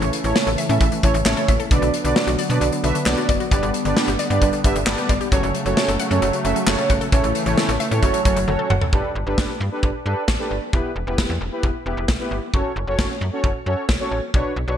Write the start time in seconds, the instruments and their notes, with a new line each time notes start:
Already playing: analog synth pad C#3 E3 A3
0.02 fm bass A1, synth arpeggio sound E3, closed hi-hat
0.13 closed hi-hat
0.24 fm bass A1, synth arpeggio sound E3, analog polysynth C#4 E4 A4 C#5, closed hi-hat
0.35 synth arpeggio sound A3, snare
0.47 fm bass A1, synth arpeggio sound A4, closed hi-hat
0.58 synth arpeggio sound E5, closed hi-hat
0.69 fm bass A2, analog polysynth C#4 E4 A4 E5, synth arpeggio sound C#4, closed hi-hat
0.81 fm bass A1, synth arpeggio sound E3, kick, closed hi-hat
0.92 synth arpeggio sound E3, closed hi-hat
1.03 fm bass A1, synth arpeggio sound E3, analog polysynth C#4 E4 A4 C#5, kick, closed hi-hat
1.14 fm bass A1, synth arpeggio sound E3, closed hi-hat
1.26 fm bass A1, synth arpeggio sound A3, analog polysynth C#4 E4 A4 C#5, snare, clap
1.37 synth arpeggio sound A4, closed hi-hat
1.48 fm bass A1, synth arpeggio sound E5, kick, closed hi-hat
1.60 synth arpeggio sound A4, closed hi-hat
1.71 fm bass B1, synth arpeggio sound D3, analog synth pad D3 F#3 B3, analog polysynth D4 F#4 B4 D5, kick, closed hi-hat
1.82 fm bass B1, synth arpeggio sound D3, closed hi-hat
1.94 closed hi-hat
2.04 fm bass B1, synth arpeggio sound D3, analog polysynth D4 F#4 B4 D5, closed hi-hat
2.16 synth arpeggio sound F#3, snare
2.27 fm bass B1, synth arpeggio sound F#4, closed hi-hat
2.39 synth arpeggio sound D5, closed hi-hat
2.50 fm bass B2, synth arpeggio sound B3, analog polysynth D4 F#4 B4 D5, closed hi-hat
2.61 fm bass B1, synth arpeggio sound D3, closed hi-hat
2.72 synth arpeggio sound D3, closed hi-hat
2.84 fm bass B1, synth arpeggio sound D3, analog polysynth D4 F#4 B4 E5, closed hi-hat
2.95 synth arpeggio sound D3, closed hi-hat
3.06 fm bass B1, synth arpeggio sound F#3, analog polysynth D4 F#4 B4 D5, snare, clap
3.18 synth arpeggio sound F#4, closed hi-hat
3.29 fm bass F#1, synth arpeggio sound D5, kick, closed hi-hat
3.40 synth arpeggio sound F#4, closed hi-hat
3.51 fm bass G1, analog synth pad D3 G3, synth arpeggio sound D3, analog polysynth D4 G4 B4 D5, kick, closed hi-hat
3.63 fm bass G1, synth arpeggio sound D3, closed hi-hat
3.74 closed hi-hat
3.85 fm bass G1, synth arpeggio sound D3, analog polysynth D4 G4 B4 D5, closed hi-hat
3.97 synth arpeggio sound G3, snare
4.08 fm bass G1, synth arpeggio sound G4, closed hi-hat
4.19 synth arpeggio sound D5, closed hi-hat
4.30 fm bass G2, synth arpeggio sound B3, analog polysynth D4 G4 B4 D5, closed hi-hat
4.42 fm bass G1, synth arpeggio sound D3, kick, closed hi-hat
4.53 synth arpeggio sound D3, closed hi-hat
4.64 fm bass G1, synth arpeggio sound D3, analog polysynth D4 G4 B4 E5, kick, closed hi-hat
4.75 fm bass G1, synth arpeggio sound D3, closed hi-hat
4.87 fm bass G1, synth arpeggio sound G3, analog polysynth D4 G4 B4 D5, snare, clap
4.98 synth arpeggio sound G4, closed hi-hat
5.09 fm bass G1, synth arpeggio sound D5, kick, closed hi-hat
5.21 synth arpeggio sound G4, closed hi-hat
5.32 fm bass F#1, analog synth pad C#3 F#3 A3, synth arpeggio sound F#3, analog polysynth C#4 F#4 A4 C#5, kick, closed hi-hat
5.43 fm bass F#1, synth arpeggio sound F#3, closed hi-hat
5.55 closed hi-hat
5.66 fm bass F#1, synth arpeggio sound F#3, analog polysynth C#4 F#4 A4 C#5, closed hi-hat
5.77 synth arpeggio sound A3, snare
5.88 fm bass F#1, synth arpeggio sound A4, closed hi-hat
5.99 synth arpeggio sound F#5, closed hi-hat
6.11 fm bass F#2, synth arpeggio sound C#4, analog polysynth C#4 F#4 A4 C#5, closed hi-hat
6.22 fm bass F#1, synth arpeggio sound F#3, closed hi-hat
6.33 synth arpeggio sound F#3, closed hi-hat
6.45 fm bass F#1, synth arpeggio sound F#3, analog polysynth C#4 F#4 A4 E5, closed hi-hat
6.56 synth arpeggio sound F#3, closed hi-hat
6.67 fm bass F#1, synth arpeggio sound A3, analog polysynth C#4 F#4 A4 C#5, snare, clap
6.78 synth arpeggio sound A4, closed hi-hat
6.90 fm bass G1, synth arpeggio sound F#5, kick, closed hi-hat
7.01 synth arpeggio sound A4, closed hi-hat
7.12 fm bass A1, synth arpeggio sound E3, analog synth pad E3 A3, analog polysynth C#4 E4 A4 C#5, kick, closed hi-hat
7.24 fm bass A1, synth arpeggio sound E3, closed hi-hat
7.35 closed hi-hat
7.46 fm bass A1, synth arpeggio sound E3, analog polysynth C#4 E4 A4 C#5, closed hi-hat
7.58 synth arpeggio sound A3, snare
7.69 fm bass A1, synth arpeggio sound A4, closed hi-hat
7.80 synth arpeggio sound E5, closed hi-hat
7.91 fm bass A2, analog polysynth C#4 E4 A4 C#5, synth arpeggio sound C#4, closed hi-hat
8.02 fm bass F#1, analog synth pad F#3, synth arpeggio sound F#3, analog polysynth C#4 F#4 A4 C#5, kick, closed hi-hat
8.14 synth arpeggio sound F#3, closed hi-hat
8.25 fm bass F#1, synth arpeggio sound F#3, analog polysynth C#4 F#4 A4 C#5, kick, closed hi-hat
8.36 fm bass F#1, synth arpeggio sound F#3, closed hi-hat
8.48 fm bass F#1, synth arpeggio sound A3, analog polysynth C#4 F#4 A4 C#5, high tom
8.59 synth arpeggio sound A4
8.70 fm bass F#1, synth arpeggio sound F#5, mid tom
8.81 synth arpeggio sound A4, floor tom
8.93 fm bass G1, analog polysynth D4 G4 A4 B4, kick
9.15 fm bass G1
9.26 fm bass G1, analog polysynth D4 G4 A4 B4
9.38 kick, snare
9.61 fm bass G2
9.72 analog polysynth D4 G4 A4 B4
9.83 fm bass G1, kick
10.05 fm bass G2, analog polysynth D4 G4 A4 B4
10.28 fm bass A1, kick, snare
10.39 analog polysynth D4 G4 A4 B4
10.51 fm bass G1
10.73 fm bass E1, analog polysynth B3 E4 G4 B4, kick
10.96 fm bass E1
11.07 fm bass E1, analog polysynth B3 E4 G4 B4
11.18 fm bass E1, kick, snare
11.30 fm bass E2
11.41 fm bass E1
11.52 analog polysynth B3 E4 G4 B4
11.63 fm bass E1, kick
11.86 fm bass E1, analog polysynth B3 E4 G4 B4
11.97 fm bass E1
12.08 fm bass B1, kick, snare
12.20 analog polysynth B3 E4 G4 B4
12.31 fm bass G1
12.54 fm bass F#1, analog polysynth C#4 F#4 A4 C#5, kick
12.76 fm bass F#1
12.87 fm bass F#1, analog polysynth C#4 F#4 A4 C#5
12.99 fm bass F#1, kick, snare
13.21 fm bass F#2
13.33 analog polysynth C#4 F#4 A4 C#5
13.44 fm bass F#1, kick
13.66 fm bass F#2, analog polysynth C#4 F#4 A4 C#5
13.89 fm bass B1, kick, snare
14.00 analog polysynth C#4 F#4 A4 C#5
14.11 fm bass A1
14.34 fm bass B1, analog polysynth D4 F#4 B4 C#5, kick
14.56 fm bass B1
14.68 fm bass B1, analog polysynth D4 F#4 B4 C#5